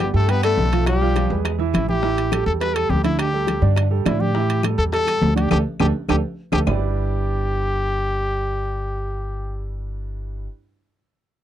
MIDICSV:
0, 0, Header, 1, 6, 480
1, 0, Start_track
1, 0, Key_signature, 1, "major"
1, 0, Tempo, 290416
1, 1435, Time_signature, 4, 2, 24, 8
1, 18906, End_track
2, 0, Start_track
2, 0, Title_t, "Grand piano"
2, 0, Program_c, 0, 0
2, 215, Note_on_c, 0, 55, 77
2, 225, Note_on_c, 0, 67, 73
2, 226, Note_on_c, 0, 79, 74
2, 420, Note_off_c, 0, 55, 0
2, 426, Note_off_c, 0, 67, 0
2, 427, Note_off_c, 0, 79, 0
2, 461, Note_on_c, 0, 55, 76
2, 465, Note_on_c, 0, 67, 68
2, 472, Note_on_c, 0, 79, 74
2, 663, Note_off_c, 0, 55, 0
2, 666, Note_off_c, 0, 67, 0
2, 670, Note_off_c, 0, 79, 0
2, 711, Note_on_c, 0, 59, 71
2, 712, Note_on_c, 0, 71, 70
2, 717, Note_on_c, 0, 74, 72
2, 1106, Note_off_c, 0, 59, 0
2, 1107, Note_off_c, 0, 71, 0
2, 1109, Note_off_c, 0, 74, 0
2, 1191, Note_on_c, 0, 65, 74
2, 1192, Note_on_c, 0, 53, 76
2, 1199, Note_on_c, 0, 77, 71
2, 1585, Note_off_c, 0, 65, 0
2, 1586, Note_off_c, 0, 53, 0
2, 1590, Note_off_c, 0, 77, 0
2, 1673, Note_on_c, 0, 53, 74
2, 1677, Note_on_c, 0, 65, 79
2, 1683, Note_on_c, 0, 77, 73
2, 1870, Note_off_c, 0, 53, 0
2, 1872, Note_off_c, 0, 65, 0
2, 1876, Note_off_c, 0, 77, 0
2, 1909, Note_on_c, 0, 53, 83
2, 1910, Note_on_c, 0, 65, 77
2, 1911, Note_on_c, 0, 77, 74
2, 2107, Note_off_c, 0, 53, 0
2, 2108, Note_off_c, 0, 65, 0
2, 2108, Note_off_c, 0, 77, 0
2, 2146, Note_on_c, 0, 56, 61
2, 2152, Note_on_c, 0, 68, 64
2, 2154, Note_on_c, 0, 71, 64
2, 2542, Note_off_c, 0, 56, 0
2, 2545, Note_off_c, 0, 68, 0
2, 2546, Note_off_c, 0, 71, 0
2, 2621, Note_on_c, 0, 52, 80
2, 2634, Note_on_c, 0, 64, 77
2, 2638, Note_on_c, 0, 76, 76
2, 3018, Note_off_c, 0, 52, 0
2, 3026, Note_off_c, 0, 64, 0
2, 3028, Note_off_c, 0, 76, 0
2, 3106, Note_on_c, 0, 52, 67
2, 3116, Note_on_c, 0, 64, 68
2, 3119, Note_on_c, 0, 76, 65
2, 3304, Note_off_c, 0, 52, 0
2, 3310, Note_off_c, 0, 64, 0
2, 3312, Note_off_c, 0, 76, 0
2, 3352, Note_on_c, 0, 52, 73
2, 3355, Note_on_c, 0, 64, 72
2, 3356, Note_on_c, 0, 76, 66
2, 3744, Note_off_c, 0, 52, 0
2, 3746, Note_off_c, 0, 64, 0
2, 3746, Note_off_c, 0, 76, 0
2, 3831, Note_on_c, 0, 55, 61
2, 3838, Note_on_c, 0, 67, 70
2, 3848, Note_on_c, 0, 69, 66
2, 4223, Note_off_c, 0, 55, 0
2, 4227, Note_off_c, 0, 67, 0
2, 4233, Note_off_c, 0, 69, 0
2, 4311, Note_on_c, 0, 55, 60
2, 4314, Note_on_c, 0, 69, 58
2, 4317, Note_on_c, 0, 67, 63
2, 4506, Note_off_c, 0, 55, 0
2, 4508, Note_off_c, 0, 69, 0
2, 4510, Note_off_c, 0, 67, 0
2, 4542, Note_on_c, 0, 55, 70
2, 4543, Note_on_c, 0, 67, 72
2, 4553, Note_on_c, 0, 69, 66
2, 4937, Note_off_c, 0, 55, 0
2, 4937, Note_off_c, 0, 67, 0
2, 4943, Note_off_c, 0, 69, 0
2, 5029, Note_on_c, 0, 50, 70
2, 5032, Note_on_c, 0, 62, 75
2, 5041, Note_on_c, 0, 74, 67
2, 5421, Note_off_c, 0, 50, 0
2, 5422, Note_off_c, 0, 62, 0
2, 5427, Note_off_c, 0, 74, 0
2, 5505, Note_on_c, 0, 55, 73
2, 5509, Note_on_c, 0, 67, 68
2, 5521, Note_on_c, 0, 69, 65
2, 5898, Note_off_c, 0, 55, 0
2, 5900, Note_off_c, 0, 67, 0
2, 5907, Note_off_c, 0, 69, 0
2, 5976, Note_on_c, 0, 50, 72
2, 5981, Note_on_c, 0, 62, 82
2, 5992, Note_on_c, 0, 74, 75
2, 6372, Note_off_c, 0, 50, 0
2, 6375, Note_off_c, 0, 62, 0
2, 6381, Note_off_c, 0, 74, 0
2, 6456, Note_on_c, 0, 55, 70
2, 6457, Note_on_c, 0, 67, 69
2, 6465, Note_on_c, 0, 69, 68
2, 6655, Note_off_c, 0, 55, 0
2, 6656, Note_off_c, 0, 67, 0
2, 6660, Note_off_c, 0, 69, 0
2, 6699, Note_on_c, 0, 50, 74
2, 6702, Note_on_c, 0, 62, 74
2, 6715, Note_on_c, 0, 74, 71
2, 7093, Note_off_c, 0, 50, 0
2, 7095, Note_off_c, 0, 62, 0
2, 7103, Note_off_c, 0, 74, 0
2, 7180, Note_on_c, 0, 64, 67
2, 7182, Note_on_c, 0, 52, 73
2, 7189, Note_on_c, 0, 76, 66
2, 7573, Note_off_c, 0, 64, 0
2, 7574, Note_off_c, 0, 52, 0
2, 7579, Note_off_c, 0, 76, 0
2, 7659, Note_on_c, 0, 55, 69
2, 7664, Note_on_c, 0, 67, 66
2, 7672, Note_on_c, 0, 69, 69
2, 8053, Note_off_c, 0, 55, 0
2, 8055, Note_off_c, 0, 67, 0
2, 8060, Note_off_c, 0, 69, 0
2, 8135, Note_on_c, 0, 55, 60
2, 8146, Note_on_c, 0, 67, 62
2, 8151, Note_on_c, 0, 69, 66
2, 8334, Note_off_c, 0, 55, 0
2, 8340, Note_off_c, 0, 67, 0
2, 8343, Note_off_c, 0, 69, 0
2, 8377, Note_on_c, 0, 55, 73
2, 8381, Note_on_c, 0, 67, 69
2, 8771, Note_off_c, 0, 55, 0
2, 8773, Note_off_c, 0, 67, 0
2, 8847, Note_on_c, 0, 50, 68
2, 8856, Note_on_c, 0, 62, 69
2, 8861, Note_on_c, 0, 74, 68
2, 9049, Note_off_c, 0, 50, 0
2, 9054, Note_off_c, 0, 62, 0
2, 9057, Note_off_c, 0, 74, 0
2, 9098, Note_on_c, 0, 62, 91
2, 9098, Note_on_c, 0, 67, 85
2, 9100, Note_on_c, 0, 69, 91
2, 9251, Note_off_c, 0, 67, 0
2, 9252, Note_off_c, 0, 62, 0
2, 9253, Note_off_c, 0, 69, 0
2, 9580, Note_on_c, 0, 69, 83
2, 9582, Note_on_c, 0, 62, 94
2, 9582, Note_on_c, 0, 67, 83
2, 9733, Note_off_c, 0, 69, 0
2, 9734, Note_off_c, 0, 62, 0
2, 9734, Note_off_c, 0, 67, 0
2, 10058, Note_on_c, 0, 69, 83
2, 10061, Note_on_c, 0, 67, 90
2, 10062, Note_on_c, 0, 62, 77
2, 10212, Note_off_c, 0, 69, 0
2, 10213, Note_off_c, 0, 67, 0
2, 10214, Note_off_c, 0, 62, 0
2, 10774, Note_on_c, 0, 67, 82
2, 10776, Note_on_c, 0, 62, 78
2, 10776, Note_on_c, 0, 69, 77
2, 10929, Note_off_c, 0, 67, 0
2, 10930, Note_off_c, 0, 62, 0
2, 10931, Note_off_c, 0, 69, 0
2, 11015, Note_on_c, 0, 55, 74
2, 11019, Note_on_c, 0, 62, 73
2, 11020, Note_on_c, 0, 64, 70
2, 11027, Note_on_c, 0, 67, 75
2, 11028, Note_on_c, 0, 71, 71
2, 11032, Note_on_c, 0, 74, 92
2, 17277, Note_off_c, 0, 55, 0
2, 17279, Note_off_c, 0, 62, 0
2, 17279, Note_off_c, 0, 64, 0
2, 17283, Note_off_c, 0, 67, 0
2, 17284, Note_off_c, 0, 71, 0
2, 17285, Note_off_c, 0, 74, 0
2, 18906, End_track
3, 0, Start_track
3, 0, Title_t, "Trumpet"
3, 0, Program_c, 1, 56
3, 0, Note_on_c, 1, 67, 102
3, 175, Note_off_c, 1, 67, 0
3, 260, Note_on_c, 1, 69, 96
3, 494, Note_on_c, 1, 71, 101
3, 518, Note_off_c, 1, 69, 0
3, 724, Note_off_c, 1, 71, 0
3, 734, Note_on_c, 1, 69, 97
3, 1394, Note_off_c, 1, 69, 0
3, 1447, Note_on_c, 1, 67, 92
3, 2333, Note_off_c, 1, 67, 0
3, 2882, Note_on_c, 1, 64, 75
3, 3100, Note_off_c, 1, 64, 0
3, 3126, Note_on_c, 1, 67, 92
3, 4010, Note_off_c, 1, 67, 0
3, 4071, Note_on_c, 1, 69, 82
3, 4178, Note_off_c, 1, 69, 0
3, 4312, Note_on_c, 1, 71, 101
3, 4545, Note_on_c, 1, 69, 91
3, 4570, Note_off_c, 1, 71, 0
3, 4794, Note_on_c, 1, 67, 81
3, 4819, Note_off_c, 1, 69, 0
3, 5014, Note_off_c, 1, 67, 0
3, 5024, Note_on_c, 1, 64, 82
3, 5247, Note_off_c, 1, 64, 0
3, 5295, Note_on_c, 1, 67, 92
3, 6172, Note_off_c, 1, 67, 0
3, 6729, Note_on_c, 1, 64, 80
3, 6950, Note_on_c, 1, 67, 97
3, 6975, Note_off_c, 1, 64, 0
3, 7664, Note_off_c, 1, 67, 0
3, 7903, Note_on_c, 1, 69, 96
3, 8010, Note_off_c, 1, 69, 0
3, 8155, Note_on_c, 1, 69, 110
3, 8816, Note_off_c, 1, 69, 0
3, 8866, Note_on_c, 1, 67, 85
3, 9086, Note_off_c, 1, 67, 0
3, 9113, Note_on_c, 1, 67, 88
3, 9224, Note_off_c, 1, 67, 0
3, 9594, Note_on_c, 1, 67, 86
3, 9705, Note_off_c, 1, 67, 0
3, 10084, Note_on_c, 1, 67, 84
3, 10192, Note_off_c, 1, 67, 0
3, 10794, Note_on_c, 1, 67, 91
3, 10905, Note_off_c, 1, 67, 0
3, 11031, Note_on_c, 1, 67, 89
3, 16128, Note_off_c, 1, 67, 0
3, 18906, End_track
4, 0, Start_track
4, 0, Title_t, "Tenor saxophone"
4, 0, Program_c, 2, 66
4, 0, Note_on_c, 2, 55, 75
4, 171, Note_off_c, 2, 55, 0
4, 257, Note_on_c, 2, 57, 76
4, 508, Note_on_c, 2, 59, 84
4, 533, Note_off_c, 2, 57, 0
4, 731, Note_off_c, 2, 59, 0
4, 739, Note_on_c, 2, 57, 82
4, 1397, Note_off_c, 2, 57, 0
4, 1457, Note_on_c, 2, 55, 77
4, 2338, Note_off_c, 2, 55, 0
4, 18906, End_track
5, 0, Start_track
5, 0, Title_t, "Upright bass"
5, 0, Program_c, 3, 32
5, 229, Note_on_c, 3, 43, 85
5, 901, Note_off_c, 3, 43, 0
5, 950, Note_on_c, 3, 35, 87
5, 2060, Note_off_c, 3, 35, 0
5, 2151, Note_on_c, 3, 40, 88
5, 2820, Note_off_c, 3, 40, 0
5, 2873, Note_on_c, 3, 33, 85
5, 3979, Note_off_c, 3, 33, 0
5, 4069, Note_on_c, 3, 40, 89
5, 4737, Note_off_c, 3, 40, 0
5, 4781, Note_on_c, 3, 38, 82
5, 5891, Note_off_c, 3, 38, 0
5, 5979, Note_on_c, 3, 43, 92
5, 6649, Note_off_c, 3, 43, 0
5, 6705, Note_on_c, 3, 45, 83
5, 7811, Note_off_c, 3, 45, 0
5, 7899, Note_on_c, 3, 40, 88
5, 8568, Note_off_c, 3, 40, 0
5, 8618, Note_on_c, 3, 38, 82
5, 9064, Note_off_c, 3, 38, 0
5, 9106, Note_on_c, 3, 38, 90
5, 9281, Note_off_c, 3, 38, 0
5, 9587, Note_on_c, 3, 38, 89
5, 9761, Note_off_c, 3, 38, 0
5, 10070, Note_on_c, 3, 38, 76
5, 10243, Note_off_c, 3, 38, 0
5, 10792, Note_on_c, 3, 38, 90
5, 10964, Note_off_c, 3, 38, 0
5, 11031, Note_on_c, 3, 31, 85
5, 17285, Note_off_c, 3, 31, 0
5, 18906, End_track
6, 0, Start_track
6, 0, Title_t, "Drums"
6, 0, Note_on_c, 9, 60, 59
6, 0, Note_on_c, 9, 63, 90
6, 0, Note_on_c, 9, 65, 83
6, 0, Note_on_c, 9, 75, 61
6, 158, Note_off_c, 9, 65, 0
6, 158, Note_off_c, 9, 75, 0
6, 159, Note_off_c, 9, 63, 0
6, 163, Note_off_c, 9, 60, 0
6, 231, Note_on_c, 9, 60, 31
6, 239, Note_on_c, 9, 63, 32
6, 396, Note_off_c, 9, 60, 0
6, 405, Note_off_c, 9, 63, 0
6, 475, Note_on_c, 9, 60, 63
6, 477, Note_on_c, 9, 65, 71
6, 479, Note_on_c, 9, 63, 33
6, 640, Note_off_c, 9, 60, 0
6, 642, Note_off_c, 9, 65, 0
6, 644, Note_off_c, 9, 63, 0
6, 712, Note_on_c, 9, 75, 59
6, 715, Note_on_c, 9, 63, 31
6, 718, Note_on_c, 9, 65, 90
6, 721, Note_on_c, 9, 60, 31
6, 877, Note_off_c, 9, 75, 0
6, 881, Note_off_c, 9, 63, 0
6, 883, Note_off_c, 9, 65, 0
6, 886, Note_off_c, 9, 60, 0
6, 960, Note_on_c, 9, 60, 36
6, 960, Note_on_c, 9, 61, 80
6, 960, Note_on_c, 9, 63, 73
6, 1125, Note_off_c, 9, 63, 0
6, 1126, Note_off_c, 9, 60, 0
6, 1126, Note_off_c, 9, 61, 0
6, 1194, Note_on_c, 9, 63, 84
6, 1203, Note_on_c, 9, 65, 65
6, 1360, Note_off_c, 9, 63, 0
6, 1369, Note_off_c, 9, 65, 0
6, 1429, Note_on_c, 9, 60, 73
6, 1436, Note_on_c, 9, 63, 34
6, 1436, Note_on_c, 9, 75, 62
6, 1440, Note_on_c, 9, 65, 80
6, 1594, Note_off_c, 9, 60, 0
6, 1602, Note_off_c, 9, 63, 0
6, 1602, Note_off_c, 9, 75, 0
6, 1605, Note_off_c, 9, 65, 0
6, 1672, Note_on_c, 9, 60, 34
6, 1677, Note_on_c, 9, 63, 35
6, 1838, Note_off_c, 9, 60, 0
6, 1842, Note_off_c, 9, 63, 0
6, 1913, Note_on_c, 9, 60, 53
6, 1913, Note_on_c, 9, 63, 88
6, 1924, Note_on_c, 9, 65, 64
6, 2078, Note_off_c, 9, 60, 0
6, 2079, Note_off_c, 9, 63, 0
6, 2089, Note_off_c, 9, 65, 0
6, 2154, Note_on_c, 9, 63, 31
6, 2155, Note_on_c, 9, 60, 32
6, 2319, Note_off_c, 9, 63, 0
6, 2321, Note_off_c, 9, 60, 0
6, 2391, Note_on_c, 9, 63, 36
6, 2395, Note_on_c, 9, 60, 59
6, 2402, Note_on_c, 9, 75, 68
6, 2403, Note_on_c, 9, 65, 88
6, 2557, Note_off_c, 9, 63, 0
6, 2561, Note_off_c, 9, 60, 0
6, 2567, Note_off_c, 9, 75, 0
6, 2568, Note_off_c, 9, 65, 0
6, 2632, Note_on_c, 9, 63, 30
6, 2636, Note_on_c, 9, 60, 33
6, 2798, Note_off_c, 9, 63, 0
6, 2801, Note_off_c, 9, 60, 0
6, 2870, Note_on_c, 9, 63, 83
6, 2874, Note_on_c, 9, 60, 33
6, 2874, Note_on_c, 9, 61, 80
6, 2878, Note_on_c, 9, 75, 59
6, 2888, Note_on_c, 9, 65, 81
6, 3036, Note_off_c, 9, 63, 0
6, 3039, Note_off_c, 9, 60, 0
6, 3039, Note_off_c, 9, 61, 0
6, 3043, Note_off_c, 9, 75, 0
6, 3054, Note_off_c, 9, 65, 0
6, 3117, Note_on_c, 9, 63, 82
6, 3282, Note_off_c, 9, 63, 0
6, 3354, Note_on_c, 9, 60, 67
6, 3358, Note_on_c, 9, 63, 35
6, 3519, Note_off_c, 9, 60, 0
6, 3523, Note_off_c, 9, 63, 0
6, 3592, Note_on_c, 9, 60, 32
6, 3599, Note_on_c, 9, 63, 32
6, 3606, Note_on_c, 9, 65, 64
6, 3758, Note_off_c, 9, 60, 0
6, 3765, Note_off_c, 9, 63, 0
6, 3771, Note_off_c, 9, 65, 0
6, 3832, Note_on_c, 9, 60, 61
6, 3834, Note_on_c, 9, 63, 88
6, 3836, Note_on_c, 9, 75, 61
6, 3848, Note_on_c, 9, 65, 93
6, 3997, Note_off_c, 9, 60, 0
6, 3999, Note_off_c, 9, 63, 0
6, 4002, Note_off_c, 9, 75, 0
6, 4013, Note_off_c, 9, 65, 0
6, 4077, Note_on_c, 9, 63, 34
6, 4081, Note_on_c, 9, 60, 30
6, 4242, Note_off_c, 9, 63, 0
6, 4246, Note_off_c, 9, 60, 0
6, 4315, Note_on_c, 9, 63, 31
6, 4319, Note_on_c, 9, 60, 58
6, 4320, Note_on_c, 9, 65, 66
6, 4480, Note_off_c, 9, 63, 0
6, 4484, Note_off_c, 9, 60, 0
6, 4485, Note_off_c, 9, 65, 0
6, 4549, Note_on_c, 9, 63, 31
6, 4555, Note_on_c, 9, 60, 35
6, 4557, Note_on_c, 9, 75, 58
6, 4560, Note_on_c, 9, 65, 79
6, 4714, Note_off_c, 9, 63, 0
6, 4721, Note_off_c, 9, 60, 0
6, 4722, Note_off_c, 9, 75, 0
6, 4725, Note_off_c, 9, 65, 0
6, 4789, Note_on_c, 9, 63, 72
6, 4798, Note_on_c, 9, 60, 31
6, 4798, Note_on_c, 9, 61, 86
6, 4954, Note_off_c, 9, 63, 0
6, 4964, Note_off_c, 9, 60, 0
6, 4964, Note_off_c, 9, 61, 0
6, 5027, Note_on_c, 9, 63, 81
6, 5033, Note_on_c, 9, 65, 63
6, 5193, Note_off_c, 9, 63, 0
6, 5199, Note_off_c, 9, 65, 0
6, 5263, Note_on_c, 9, 63, 34
6, 5267, Note_on_c, 9, 75, 61
6, 5269, Note_on_c, 9, 60, 70
6, 5278, Note_on_c, 9, 65, 88
6, 5428, Note_off_c, 9, 63, 0
6, 5432, Note_off_c, 9, 75, 0
6, 5434, Note_off_c, 9, 60, 0
6, 5444, Note_off_c, 9, 65, 0
6, 5503, Note_on_c, 9, 63, 35
6, 5507, Note_on_c, 9, 60, 31
6, 5669, Note_off_c, 9, 63, 0
6, 5672, Note_off_c, 9, 60, 0
6, 5741, Note_on_c, 9, 60, 56
6, 5748, Note_on_c, 9, 63, 91
6, 5755, Note_on_c, 9, 65, 68
6, 5906, Note_off_c, 9, 60, 0
6, 5914, Note_off_c, 9, 63, 0
6, 5921, Note_off_c, 9, 65, 0
6, 5983, Note_on_c, 9, 60, 34
6, 5989, Note_on_c, 9, 63, 32
6, 6149, Note_off_c, 9, 60, 0
6, 6154, Note_off_c, 9, 63, 0
6, 6218, Note_on_c, 9, 63, 36
6, 6221, Note_on_c, 9, 75, 72
6, 6222, Note_on_c, 9, 60, 62
6, 6239, Note_on_c, 9, 65, 86
6, 6383, Note_off_c, 9, 63, 0
6, 6387, Note_off_c, 9, 60, 0
6, 6387, Note_off_c, 9, 75, 0
6, 6404, Note_off_c, 9, 65, 0
6, 6459, Note_on_c, 9, 60, 31
6, 6465, Note_on_c, 9, 63, 29
6, 6624, Note_off_c, 9, 60, 0
6, 6630, Note_off_c, 9, 63, 0
6, 6703, Note_on_c, 9, 63, 73
6, 6704, Note_on_c, 9, 75, 56
6, 6707, Note_on_c, 9, 60, 33
6, 6707, Note_on_c, 9, 61, 81
6, 6715, Note_on_c, 9, 65, 91
6, 6715, Note_on_c, 9, 66, 68
6, 6868, Note_off_c, 9, 63, 0
6, 6869, Note_off_c, 9, 75, 0
6, 6872, Note_off_c, 9, 60, 0
6, 6872, Note_off_c, 9, 61, 0
6, 6880, Note_off_c, 9, 65, 0
6, 6880, Note_off_c, 9, 66, 0
6, 6945, Note_on_c, 9, 63, 81
6, 7110, Note_off_c, 9, 63, 0
6, 7186, Note_on_c, 9, 60, 69
6, 7351, Note_off_c, 9, 60, 0
6, 7420, Note_on_c, 9, 63, 35
6, 7421, Note_on_c, 9, 60, 30
6, 7436, Note_on_c, 9, 65, 72
6, 7585, Note_off_c, 9, 63, 0
6, 7586, Note_off_c, 9, 60, 0
6, 7601, Note_off_c, 9, 65, 0
6, 7658, Note_on_c, 9, 75, 68
6, 7659, Note_on_c, 9, 63, 88
6, 7664, Note_on_c, 9, 60, 55
6, 7677, Note_on_c, 9, 65, 86
6, 7824, Note_off_c, 9, 63, 0
6, 7824, Note_off_c, 9, 75, 0
6, 7829, Note_off_c, 9, 60, 0
6, 7842, Note_off_c, 9, 65, 0
6, 7900, Note_on_c, 9, 63, 31
6, 7907, Note_on_c, 9, 60, 35
6, 8065, Note_off_c, 9, 63, 0
6, 8073, Note_off_c, 9, 60, 0
6, 8134, Note_on_c, 9, 63, 34
6, 8144, Note_on_c, 9, 60, 63
6, 8156, Note_on_c, 9, 65, 64
6, 8300, Note_off_c, 9, 63, 0
6, 8309, Note_off_c, 9, 60, 0
6, 8322, Note_off_c, 9, 65, 0
6, 8381, Note_on_c, 9, 60, 32
6, 8385, Note_on_c, 9, 63, 31
6, 8387, Note_on_c, 9, 75, 63
6, 8398, Note_on_c, 9, 65, 75
6, 8546, Note_off_c, 9, 60, 0
6, 8550, Note_off_c, 9, 63, 0
6, 8552, Note_off_c, 9, 75, 0
6, 8563, Note_off_c, 9, 65, 0
6, 8618, Note_on_c, 9, 63, 78
6, 8623, Note_on_c, 9, 60, 36
6, 8623, Note_on_c, 9, 61, 81
6, 8634, Note_on_c, 9, 66, 61
6, 8783, Note_off_c, 9, 63, 0
6, 8789, Note_off_c, 9, 60, 0
6, 8789, Note_off_c, 9, 61, 0
6, 8800, Note_off_c, 9, 66, 0
6, 8863, Note_on_c, 9, 63, 81
6, 8884, Note_on_c, 9, 65, 70
6, 9029, Note_off_c, 9, 63, 0
6, 9049, Note_off_c, 9, 65, 0
6, 9100, Note_on_c, 9, 61, 87
6, 9104, Note_on_c, 9, 63, 100
6, 9105, Note_on_c, 9, 75, 88
6, 9118, Note_on_c, 9, 65, 91
6, 9266, Note_off_c, 9, 61, 0
6, 9270, Note_off_c, 9, 63, 0
6, 9271, Note_off_c, 9, 75, 0
6, 9283, Note_off_c, 9, 65, 0
6, 9579, Note_on_c, 9, 75, 91
6, 9584, Note_on_c, 9, 61, 94
6, 9589, Note_on_c, 9, 63, 84
6, 9592, Note_on_c, 9, 65, 97
6, 9744, Note_off_c, 9, 75, 0
6, 9749, Note_off_c, 9, 61, 0
6, 9755, Note_off_c, 9, 63, 0
6, 9757, Note_off_c, 9, 65, 0
6, 10056, Note_on_c, 9, 63, 90
6, 10058, Note_on_c, 9, 61, 76
6, 10068, Note_on_c, 9, 75, 91
6, 10076, Note_on_c, 9, 65, 102
6, 10221, Note_off_c, 9, 63, 0
6, 10223, Note_off_c, 9, 61, 0
6, 10233, Note_off_c, 9, 75, 0
6, 10241, Note_off_c, 9, 65, 0
6, 10776, Note_on_c, 9, 63, 93
6, 10778, Note_on_c, 9, 61, 88
6, 10786, Note_on_c, 9, 75, 90
6, 10791, Note_on_c, 9, 65, 94
6, 10941, Note_off_c, 9, 63, 0
6, 10943, Note_off_c, 9, 61, 0
6, 10951, Note_off_c, 9, 75, 0
6, 10956, Note_off_c, 9, 65, 0
6, 11017, Note_on_c, 9, 64, 93
6, 11019, Note_on_c, 9, 61, 94
6, 11024, Note_on_c, 9, 75, 90
6, 11029, Note_on_c, 9, 66, 84
6, 11183, Note_off_c, 9, 64, 0
6, 11184, Note_off_c, 9, 61, 0
6, 11190, Note_off_c, 9, 75, 0
6, 11194, Note_off_c, 9, 66, 0
6, 18906, End_track
0, 0, End_of_file